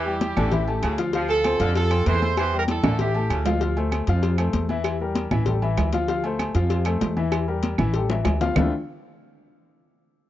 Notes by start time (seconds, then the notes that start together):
Already playing: E2 E3 E4 G4
0.06 G3 G4 G5, high conga
0.21 cowbell, high conga, low agogo
0.37 A1 D3 A3 A4 A5, high conga, low conga, low agogo, claves
0.52 E3 E4 E5, cowbell, high conga, low conga
0.68 A3 A4 A5, high conga, low agogo
0.83 D2 C#3, cowbell, high conga, low agogo, claves
0.98 F3 F4 F5, cowbell
1.13 F3 F4 F5, cowbell, high conga
1.29 F4 A4, high conga, low agogo
1.44 C4 C5 C6, cowbell, high conga, low agogo, claves
1.60 F2 D3 F4 F5 F6, cowbell, high conga
1.75 F4 A4, cowbell, high conga, low agogo
1.91 C4 C5 C6, cowbell, high conga, low agogo, claves
2.06 E2 E3 A4 C5, cowbell, high conga
2.22 E4 E5 E6, high conga, low agogo
2.37 E3 G4 C5, cowbell, high conga, low agogo, claves
2.53 G3 G4 G5, high conga
2.58 G4 A#4
2.68 E4 A4, cowbell, high conga, low agogo
2.84 A1 D3 A3 A4 A5, high conga, low conga, high timbale, low agogo, claves
2.99 E3 E4 G4 E5, cowbell, high conga, low conga
3.14 A3 A4 A5, high conga, low agogo
3.30 D2 C#3, cowbell, high conga, low agogo, claves
3.46 F3 F4 F5, cowbell, low timbale
3.61 F3 F4 F5, cowbell, high conga
3.77 A3 A4 C5, high conga, low agogo
3.92 cowbell, high conga, low agogo, claves
4.07 F2 F3 F4 F5, cowbell, high conga
4.23 cowbell, high conga, low agogo
4.38 A3 A4 C5, cowbell, high conga, low agogo, claves
4.53 E2, cowbell, high conga
4.69 E3 E4 E5, high conga, low agogo
4.84 cowbell, high conga, low agogo, claves
5.00 G3 G4 A#4, high conga
5.15 cowbell, high conga, low agogo
5.31 A1 E3 E4 E5, high conga, low conga, low agogo, claves
5.46 G3 G4 A4, cowbell, high conga, low conga
5.62 E3 E4 E5, high conga, low agogo
5.77 D2, cowbell, high conga, low timbale, low agogo, claves
5.93 F3 F4 F5, cowbell, high conga
6.08 F3 F4 F5, cowbell, high conga
6.24 A3 A4 C5, high conga, low agogo
6.39 cowbell, high conga, low agogo, claves
6.55 F2 F3 F4 F5, cowbell, high conga
6.70 cowbell, high conga, low agogo
6.85 A3 A4 C5, cowbell, high conga, low agogo, claves
7.01 E2, cowbell, high conga, low timbale
7.17 E3 E4 E5, high conga, low agogo
7.32 cowbell, high conga, low agogo, claves
7.48 G3 G4 A#4, high conga
7.63 cowbell, high conga, low agogo
7.78 A1 E3 E4 E5, high conga, low conga, low agogo, claves
7.94 G3 G4 A4, cowbell, high conga
8.09 E3 E4 E5, high bongo, high conga, low agogo
8.25 D2, cowbell, high bongo, high conga, low timbale, low agogo, claves
8.41 F3 F4 F5, cowbell, low bongo, high conga
8.56 D2 D3 A3 C4 D4 E4 F4, low bongo, low conga, low timbale, claves